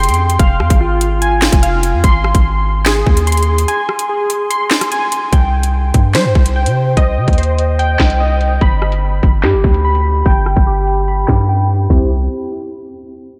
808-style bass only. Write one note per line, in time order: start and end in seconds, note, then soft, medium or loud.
0.00 0.10 F1 loud
0.09 0.38 F2 loud
0.39 0.61 F1 loud
0.60 0.70 F2 loud
0.70 1.49 G#1 loud
1.52 1.95 F1 loud
1.94 2.03 F2 loud
2.04 2.33 G#1 loud
2.35 3.04 G#1 loud
3.07 3.66 D#2 loud
5.33 5.92 C2 loud
5.94 6.16 G2 loud
6.15 6.27 G3 loud
6.25 6.35 G2 loud
6.35 6.68 C2 loud
6.66 6.95 C3 loud
6.97 7.19 C2 loud
7.17 7.27 C3 loud
7.28 7.97 D#2 loud
8.00 8.59 C2 loud
8.61 9.20 G1 loud
9.23 9.45 G1 loud
9.44 9.55 G2 loud
9.54 9.64 G1 loud
9.64 10.23 D2 loud
10.26 10.55 G1 loud
10.57 11.26 G1 loud
11.28 11.88 G2 loud
11.90 12.28 C2 loud